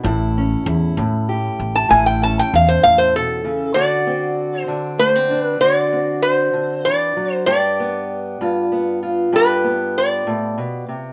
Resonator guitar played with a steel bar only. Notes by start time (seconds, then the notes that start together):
1.76 A5
1.91 G#5
2.06 G5
2.23 A5
2.39 G5
2.55 F5
2.69 C5
2.83 F5
2.98 C5
3.16 A4
3.74 D5
4.62 C5
4.99 C5
5.40 B4
5.61 D5
6.23 C5
6.85 D5
7.34 C5
7.46 D5
9.36 B4
9.98 D5